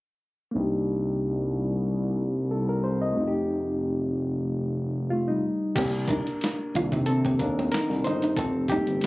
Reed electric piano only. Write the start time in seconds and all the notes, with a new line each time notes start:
0.51 A#3 D4
0.57 D#4 G4
2.51 A4
2.69 A#4
2.84 C5
3.02 D#5
3.13 A3 C4
3.18 D#4 F4
3.28 G4
5.10 A3 F4
5.28 G3 D#4
5.75 A#3 G4
6.09 D4 A#4
6.74 D#3 A#3 D4
7.06 C4 A4
7.39 D4 A#4
7.72 D#4 A#4
8.04 D#4 C5
8.37 C4 A4
8.70 G3 A3 A#3 D#4 G4